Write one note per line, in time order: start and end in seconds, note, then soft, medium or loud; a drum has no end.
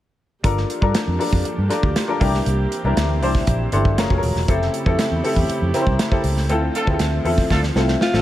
0.43 0.63 G1 medium
0.43 2.19 F3 medium
0.43 4.44 A#3 medium
0.43 0.80 D4 medium
0.43 2.19 D4 medium
0.43 0.80 F4 medium
0.43 3.94 G4 medium
0.43 0.80 A4 medium
0.43 0.80 A#4 medium
0.43 kick loud
0.43 closed hi-hat medium
0.57 snare soft
0.70 closed hi-hat medium
0.81 0.92 G2 medium
0.81 1.17 D4 medium
0.81 1.17 F4 medium
0.81 1.18 A4 medium
0.81 1.18 A#4 medium
0.81 kick medium
0.95 snare loud
0.95 closed hi-hat medium
1.07 1.17 F2 medium
1.19 1.67 D4 medium
1.19 1.67 F4 medium
1.19 1.67 A4 medium
1.19 1.68 A#4 medium
1.19 open hi-hat medium
1.32 1.42 F2 medium
1.32 kick medium
1.45 muted fingered electric bass stroke soft
1.45 closed hi-hat medium
1.58 1.67 G2 medium
1.69 2.06 D4 medium
1.69 2.06 F4 medium
1.69 2.06 A4 medium
1.69 2.06 A#4 medium
1.69 snare soft
1.69 closed hi-hat medium
1.83 1.93 D2 medium
1.83 kick medium
1.96 snare medium
1.96 closed hi-hat medium
2.08 2.18 D4 medium
2.08 2.21 F4 medium
2.08 2.21 A4 medium
2.08 2.19 A#4 medium
2.20 2.40 C2 medium
2.20 3.96 E3 medium
2.20 3.96 C4 medium
2.20 2.80 D4 medium
2.20 2.80 E4 medium
2.20 2.80 G4 medium
2.20 2.80 A#4 medium
2.20 kick loud
2.20 open hi-hat medium
2.34 snare soft
2.46 2.65 C2 loud
2.46 closed hi-hat medium
2.72 closed hi-hat medium
2.84 2.94 C2 medium
2.84 3.20 D4 medium
2.84 3.20 E4 medium
2.84 3.20 G4 medium
2.84 3.20 A#4 medium
2.97 3.22 D2 medium
2.97 snare loud
2.97 closed hi-hat medium
3.22 3.41 C2 medium
3.22 3.70 D4 medium
3.22 3.70 E4 medium
3.22 3.70 G4 medium
3.22 3.70 C5 medium
3.22 open hi-hat medium
3.35 kick medium
3.35 snare soft
3.47 3.66 A#1 medium
3.47 kick medium
3.47 closed hi-hat medium
3.72 3.98 G1 medium
3.72 3.98 D4 medium
3.72 3.98 E4 medium
3.72 3.98 G4 medium
3.72 3.98 A4 medium
3.72 3.96 C6 medium
3.72 closed hi-hat medium
3.85 kick medium
3.98 4.07 F#1 medium
3.98 6.47 C#3 medium
3.98 4.48 F#3 medium
3.98 4.48 G#3 medium
3.98 4.09 C#4 medium
3.98 4.10 F4 medium
3.98 4.10 G#4 medium
3.98 4.10 A#4 medium
3.98 4.45 F5 medium
3.98 snare loud
3.98 closed hi-hat medium
4.10 4.20 F1 medium
4.10 4.46 C#4 medium
4.10 4.46 F4 medium
4.10 4.46 G#4 medium
4.10 4.17 A4 medium
4.10 kick loud
4.18 4.50 A#4 medium
4.23 4.32 D#1 medium
4.23 open hi-hat medium
4.35 4.45 E1 medium
4.35 snare soft
4.48 4.67 F1 loud
4.48 8.22 A3 medium
4.48 4.84 C4 medium
4.48 4.84 E4 medium
4.48 6.49 E4 medium
4.48 6.48 G4 medium
4.48 4.84 G4 medium
4.48 4.84 A4 medium
4.48 kick loud
4.48 closed hi-hat medium
4.62 snare soft
4.74 closed hi-hat medium
4.86 4.96 F2 medium
4.86 5.21 C4 medium
4.86 5.22 E4 medium
4.86 5.22 G4 medium
4.86 5.22 A4 medium
4.86 kick medium
4.99 snare loud
4.99 closed hi-hat medium
5.11 5.21 E2 medium
5.24 5.71 C4 medium
5.24 5.72 E4 medium
5.24 5.72 G4 medium
5.24 5.72 A4 medium
5.24 open hi-hat medium
5.36 5.46 E2 medium
5.36 kick medium
5.49 muted fingered electric bass stroke soft
5.49 closed hi-hat medium
5.62 5.71 F2 loud
5.74 6.10 C4 medium
5.74 6.10 E4 medium
5.74 6.10 G4 medium
5.74 5.81 A#4 medium
5.74 snare soft
5.74 closed hi-hat medium
5.81 6.13 C5 medium
5.87 5.96 C2 medium
5.87 kick medium
5.99 snare loud
5.99 closed hi-hat medium
6.11 6.47 C4 medium
6.11 6.47 E4 medium
6.11 6.48 G4 medium
6.11 6.48 A4 medium
6.11 kick medium
6.24 6.49 C#2 loud
6.24 open hi-hat medium
6.37 snare soft
6.49 6.69 D2 medium
6.49 8.22 D3 medium
6.49 8.22 F3 medium
6.49 6.85 C4 medium
6.49 8.22 C4 medium
6.49 6.85 E4 medium
6.49 6.85 F4 medium
6.49 6.86 A4 medium
6.49 closed hi-hat medium
6.75 6.86 D4 medium
6.75 6.86 F4 medium
6.75 6.86 A4 medium
6.75 closed hi-hat medium
6.87 6.97 D2 medium
6.87 7.23 C4 medium
6.87 7.23 E4 medium
6.87 7.23 F4 medium
6.87 6.94 G#4 medium
6.87 kick medium
6.94 7.24 A4 medium
6.99 7.19 D2 medium
6.99 snare loud
6.99 closed hi-hat medium
7.25 7.44 E2 medium
7.25 7.73 C4 medium
7.25 7.73 E4 medium
7.25 7.73 F4 medium
7.25 7.73 A4 medium
7.25 open hi-hat medium
7.38 kick medium
7.38 snare soft
7.50 7.70 D2 medium
7.50 7.62 D4 medium
7.50 7.62 F4 medium
7.50 7.62 A4 medium
7.50 kick medium
7.50 snare medium
7.63 snare soft
7.75 7.95 C2 medium
7.75 8.12 C4 medium
7.75 8.12 E4 medium
7.75 8.12 F4 medium
7.75 8.12 A4 medium
7.75 snare medium
7.88 snare medium
8.01 8.22 F4 medium
8.01 snare medium
8.13 8.22 A1 medium
8.13 8.22 C4 medium
8.13 8.22 F4 medium
8.13 8.22 A4 medium
8.13 8.22 E5 medium
8.13 snare medium